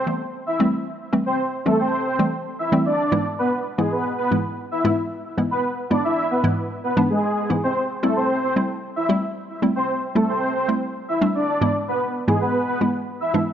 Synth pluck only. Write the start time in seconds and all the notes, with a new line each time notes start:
0.07 E3 G3 A3 B3
0.60 E3 G3 A3 C4
1.13 E3 G3 A3 C4
1.66 E3 G3 A3 C4
2.19 E3 G3 A3 C4
2.72 E3 G3 A3 C4
3.12 G#2 E3 G#3 B3 E4
3.78 G#2 E3 G#3 B3 E4
4.31 G#2 E3 G#3 B3 E4
4.84 G#2 E3 G#3 B3 E4
5.37 G#2 E3 G#3 B3 E4
5.91 G#2 E3 G#3 B3 E4
6.44 G#2 E3 G#3 B3 E4
6.97 G#2 E3 G#3 B3 D4
7.50 G#2 E3 G#3 B3 E4
8.03 G3 A3 C4 E4
8.56 G3 A3 C4 E4
9.09 G3 A3 C4 E4
9.62 G3 A3 C4 E4
10.15 G3 A3 C4 E4
10.68 G3 A3 C4 E4
11.21 G3 A3 C4 D4
11.61 G#2 E3 G#3 B3 E4
12.28 G#2 E3 G#3 B3 E4
12.81 G#2 E3 G#3 B3 E4
13.34 G#2 E3 G#3 B3 D4